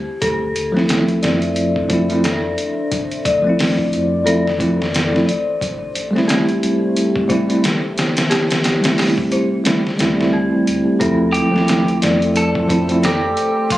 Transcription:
Already playing: synth bell G4 C5
0.21 sub bass D2, ambient pad D4 C5 E5, synth bell A4, kick, closed hi-hat
0.56 sub bass D2, closed hi-hat
0.72 tine electric piano F3 A3
0.77 tine electric piano C4 E4, snare
0.89 snare, closed hi-hat
1.08 closed hi-hat
1.23 sub bass F2, synth bell D5, snare, closed hi-hat
1.42 closed hi-hat
1.56 closed hi-hat
1.76 kick
1.89 tine electric piano F3 A3 C4 E4, kick, closed hi-hat
2.09 tine electric piano F3 A3 C4 E4, closed hi-hat
2.24 synth bell A4, snare, closed hi-hat
2.58 closed hi-hat
2.91 ambient pad D5, kick, closed hi-hat
3.11 closed hi-hat
3.25 sub bass D2, synth bell D5, kick, closed hi-hat
3.42 tine electric piano F3 A3
3.47 tine electric piano C4 E4
3.59 snare, open hi-hat
3.79 kick
3.93 sub bass F2, closed hi-hat
4.24 tine electric piano F3 A3 C4 E4, synth bell A4, closed hi-hat
4.47 snare
4.58 tine electric piano F3 A3 C4 E4, kick, closed hi-hat
4.82 snare
4.94 snare, closed hi-hat
5.11 tine electric piano F3 A3 C4 E4
5.16 snare
5.26 sub bass A1, synth bell D5, closed hi-hat
5.61 sub bass A1, ambient pad A3 G4, kick, closed hi-hat
5.95 sub bass A1, closed hi-hat
6.11 tine electric piano G3 A3
6.15 tine electric piano C4 E4, snare
6.28 synth bell G4, snare, closed hi-hat
6.49 closed hi-hat
6.63 sub bass C2, closed hi-hat
6.96 closed hi-hat
7.16 kick
7.28 tine electric piano G3 A3 C4 E4, synth bell C5, kick, closed hi-hat
7.48 tine electric piano G3 A3 C4 E4, closed hi-hat
7.64 snare, closed hi-hat
7.98 snare, closed hi-hat
8.17 snare, closed hi-hat
8.30 synth bell G4, snare, closed hi-hat
8.51 snare, closed hi-hat
8.64 sub bass A1, snare, closed hi-hat
8.80 tine electric piano G3 A3, closed hi-hat
8.85 tine electric piano C4 E4, snare
8.98 snare, open hi-hat
9.18 kick
9.32 sub bass C2, synth bell C5, closed hi-hat
9.64 tine electric piano G3 A3 C4 E4, snare, closed hi-hat
9.87 snare
9.98 sub bass D2, tine electric piano G3 A3 C4 E4, snare, closed hi-hat
10.15 tine electric piano G3 A3
10.20 tine electric piano C4 E4, snare
10.33 synth bell G4
10.54 sub bass A1
10.67 sub bass D2, closed hi-hat
10.99 sub bass D2, tine electric piano F3 A3 C4 E4, synth drone A3, synth bell A4, ambient pad C5 E6, kick, closed hi-hat, sub drop
11.33 sub bass D2, clean electric guitar G4, closed hi-hat
11.51 tine electric piano F3 A3
11.56 tine electric piano C4 E4, snare
11.68 snare, closed hi-hat
11.88 closed hi-hat
12.02 sub bass F2, synth bell D5, snare, closed hi-hat
12.22 closed hi-hat
12.36 clean electric guitar A4, closed hi-hat
12.55 kick
12.68 tine electric piano F3 A3 C4 E4, kick, closed hi-hat
12.88 tine electric piano F3 A3 C4 E4, closed hi-hat
13.03 clean electric guitar G4, synth bell A4, snare, closed hi-hat
13.37 closed hi-hat
13.70 clean electric guitar F4, kick, closed hi-hat

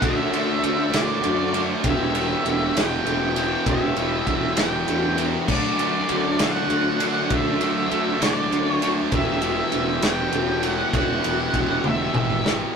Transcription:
0.01 fingered electric bass D2, overdriven electric guitar D3 A3 D4 F#4, lead electric guitar E5, kick, ride
0.32 fingered electric bass D2, overdriven electric guitar D3 A3 D4 F#4, ride
0.62 fingered electric bass D2, overdriven electric guitar D3 A3 D4 F#4, ride
0.92 fingered electric bass D2, overdriven electric guitar D3 A3 D4 F#4, snare, ride
0.97 lead electric guitar D5
1.22 fingered electric bass F#2, overdriven electric guitar D3 A3 D4 F#4, ride
1.53 overdriven electric guitar D3 A3 D4 F#4, ride
1.83 fingered electric bass E1, distorted electric guitar E2 B2, overdriven electric guitar E3 B3 E4 G4, kick, ride
1.88 overdriven electric guitar E3, lead electric guitar E5
2.14 distorted electric guitar E2 B2, overdriven electric guitar E3 B3 E4 G4, ride
2.18 distorted electric guitar E3
2.44 fingered electric bass E1, distorted electric guitar E2, overdriven electric guitar E3 B3 E4 G4, ride
2.48 distorted electric guitar B2 E3
2.74 fingered electric bass E1, distorted electric guitar E2 B2, overdriven electric guitar E3 B3 E4 G4, lead electric guitar G5, snare, ride
3.04 fingered electric bass E1, distorted electric guitar E2 B2, overdriven electric guitar E3 B3 E4 G4, ride
3.35 distorted electric guitar E2 B2, overdriven electric guitar E3 B3 E4 G4, ride
3.66 fingered electric bass E1, distorted electric guitar E2 B2, overdriven electric guitar E3 B3 E4 G4, kick, ride
3.70 lead electric guitar E5
3.96 fingered electric bass E1, distorted electric guitar E2 B2, overdriven electric guitar E3 B3 E4 G4, ride
4.26 fingered electric bass E1, distorted electric guitar E2 B2, overdriven electric guitar E3 B3 E4 G4, kick, ride
4.56 fingered electric bass E1, distorted electric guitar E2 B2, overdriven electric guitar E3 B3 E4 G4, snare, ride
4.61 lead electric guitar G5
4.86 distorted electric guitar E2 B2, fingered electric bass E2, overdriven electric guitar E3 B3 E4 G4, ride
5.16 distorted electric guitar E2 B2, overdriven electric guitar E3 B3 E4 G4, ride
5.21 overdriven electric guitar E2
5.47 fingered electric bass D2, overdriven electric guitar D3 F#3 A3 D4 F#4, kick, crash
5.52 lead electric guitar D5
5.77 overdriven electric guitar D3 F#3 A3 D4 F#4, ride
6.08 fingered electric bass D2, overdriven electric guitar D3 F#3 A3 D4 F#4, ride
6.38 fingered electric bass D2, overdriven electric guitar D3 F#3 A3 D4 F#4, snare, ride
6.43 lead electric guitar F#5
6.69 fingered electric bass D2, overdriven electric guitar D3 F#3 A3 D4 F#4, ride
7.00 overdriven electric guitar D3 F#3 A3 D4 F#4, ride
7.30 fingered electric bass D2, overdriven electric guitar D3 F#3 A3 D4 F#4, kick, ride
7.34 lead electric guitar E5
7.61 fingered electric bass D2, overdriven electric guitar D3 F#3 A3 D4 F#4, ride
7.90 fingered electric bass D2, overdriven electric guitar D3 F#3 A3 D4 F#4, ride
8.21 fingered electric bass D2, overdriven electric guitar D3 F#3 A3 D4 F#4, lead electric guitar D5, snare, ride
8.51 fingered electric bass D2, overdriven electric guitar D3 F#3 A3 D4 F#4, ride
8.68 lead electric guitar C#5
8.82 overdriven electric guitar D3 F#3 A3 D4 F#4, ride
9.10 fingered electric bass E1, distorted electric guitar E2 B2, overdriven electric guitar E3 B3 E4 G4, kick, ride
9.15 lead electric guitar E5
9.41 distorted electric guitar E2 B2, overdriven electric guitar E3 B3 E4 G4, ride
9.71 fingered electric bass E1, distorted electric guitar E2 B2, overdriven electric guitar E3 B3 E4 G4, ride
10.02 fingered electric bass E1, distorted electric guitar E2 B2, overdriven electric guitar E3 B3 E4 G4, lead electric guitar G5, snare, ride
10.31 fingered electric bass E1, distorted electric guitar E2 B2, overdriven electric guitar E3 B3 E4 G4, ride
10.61 distorted electric guitar E2 B2, overdriven electric guitar E3 B3 E4 G4, ride
10.66 overdriven electric guitar E2, lead electric guitar F#5
10.91 fingered electric bass E1, distorted electric guitar E2 B2, overdriven electric guitar E3 B3 E4 G4, kick, ride
10.96 overdriven electric guitar E3, lead electric guitar F#5
11.21 fingered electric bass E1, distorted electric guitar E2 B2, overdriven electric guitar E3 B3 E4 G4, ride
11.52 fingered electric bass E1, distorted electric guitar E2 B2, overdriven electric guitar E3 B3 E4 G4, kick, ride
11.83 fingered electric bass E1, distorted electric guitar E2 B2, overdriven electric guitar E3 B3 E4 G4, high tom
11.87 lead electric guitar E5
12.13 fingered electric bass G#1, distorted electric guitar E2 B2, overdriven electric guitar E3 B3 E4 G4, mid tom
12.30 mid tom
12.44 distorted electric guitar E2 B2, overdriven electric guitar E3 B3 E4 G4, snare

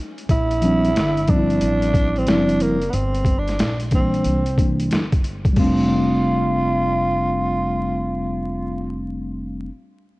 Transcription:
0.18 closed hi-hat
0.30 upright bass A#1, tenor saxophone E4, kick, closed hi-hat
0.51 closed hi-hat
0.62 tine electric piano F3 G3 C4 D4, closed hi-hat
0.84 closed hi-hat
0.96 upright bass G1, snare, closed hi-hat
1.17 closed hi-hat
1.27 tine electric piano F3 G3 C4 D#4, tenor saxophone D4, kick, closed hi-hat
1.36 tine electric piano E4
1.50 closed hi-hat
1.61 upright bass A1, closed hi-hat
1.82 closed hi-hat
1.94 kick, closed hi-hat
2.16 tenor saxophone C4, closed hi-hat
2.26 upright bass F#1, tine electric piano F3 G3 C4 E4, tenor saxophone D4, snare, closed hi-hat
2.49 closed hi-hat
2.60 tenor saxophone A#3, closed hi-hat
2.82 closed hi-hat
2.90 upright bass G1, tenor saxophone B3, closed hi-hat
2.94 tenor saxophone C4
3.14 closed hi-hat
3.25 kick, closed hi-hat
3.38 tenor saxophone D4
3.47 snare, closed hi-hat
3.59 upright bass A#1, snare, closed hi-hat
3.80 closed hi-hat
3.91 tine electric piano E3 G3 A#3 D4, tenor saxophone C4, kick, closed hi-hat
4.14 closed hi-hat
4.24 upright bass C2, closed hi-hat
4.46 closed hi-hat
4.57 tine electric piano E3 G3 A#3 D4, kick, closed hi-hat
4.80 closed hi-hat
4.91 upright bass G1, snare, closed hi-hat
5.13 kick, closed hi-hat
5.24 closed hi-hat
5.45 kick, closed hi-hat
5.53 tine electric piano G3 A3, kick, crash
5.57 upright bass F1, tine electric piano C4, tenor saxophone F4
5.63 tine electric piano D4

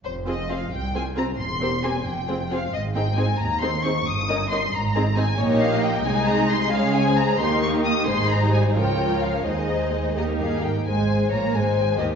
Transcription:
0.04 double bass section F1, cello section F2, violin section C5
0.26 viola section C4 F4, violin section G#4 C5 D#5
0.49 viola section C4 F4, violin section G#4 C5 F5
0.72 double bass section C2, cello section C2, violin section G5
0.94 viola section C4 F4, violin section G#4 C5 G#5
1.16 viola section C4 F4, violin section G#4 C5 A#5
1.38 double bass section E1, cello section E2, violin section C6
1.61 viola section C4 G4, violin section A#4 C5
1.83 viola section C4 G4, violin section A#4 C5 G#5
2.05 double bass section F1, cello section F2, violin section G5
2.28 viola section C4 F4, violin section G#4 C5
2.51 viola section C4 F4, violin section G#4 C5 F5
2.72 double bass section G#1, cello section G#2, violin section D#5
2.94 viola section C4 D#4, violin section G#4 C5 G5
3.16 viola section C4 D#4, violin section G#4 C5 G#5
3.39 cello section D#2, double bass section D#2, violin section A#5
3.60 viola section C4 D#4, violin section G#4 C5 C6
3.84 viola section C4 D#4, violin section G#4 C5 C#6
4.06 double bass section G1, cello section G2, violin section D#6
4.29 viola section C#4 D#4, violin section A#4 D#5
4.50 viola section C#4 D#4, violin section A#4 D#5 C6
4.72 double bass section G#1, cello section G#2, violin section A#5
4.94 viola section C4 D#4, violin section G#4 D#5
5.16 viola section C4 D#4, violin section G#4 D#5 G#5
5.39 double bass section A#1, cello section A#2, viola section A#3 D#4, violin section G4 C#5 D#5
5.61 violin section F5
5.82 violin section G5
6.05 double bass section C2, cello section C3, viola section G#3 D#4, violin section G#4 D#5 G#5
6.26 violin section A#5
6.49 violin section C6
6.71 double bass section C#2, cello section C#3, viola section G#3 G#4, violin section G#4 C#5 F5
6.95 violin section G#5
7.06 violin section C5
7.17 violin section A#5
7.39 double bass section D#2, cello section D#3, viola section A#3 D#4, violin section G4 A#4 C6
7.63 violin section C#6
7.84 violin section D#6
8.06 double bass section G#1, cello section G#2, viola section G#3 D#4, violin section G#4 C5 C6
8.31 violin section A#5
8.41 viola section G3
8.53 violin section G#5
8.75 cello section C#2, double bass section C#2, viola section F3 F4, violin section A#4 C#5 G5
9.22 violin section F5
9.46 cello section D#2, double bass section D#2, viola section G#3 D#4, violin section G#4 C5 D#5
10.17 cello section D#2, viola section A#3 D#4, violin section G4 A#4 D#5
10.40 cello section G2, violin section G#4 F5
10.63 cello section G#2, violin section A#4 G5
10.86 double bass section G#1, cello section G#2, viola section G#3, violin section C5 G#5
11.31 double bass section A#1, cello section A#2, viola section A#3, violin section C#5 A#5
11.54 double bass section G#1, cello section G#2, viola section G#3, violin section C5 G#5
11.98 cello section D#2, double bass section D#2, viola section D#3, violin section G4 D#5

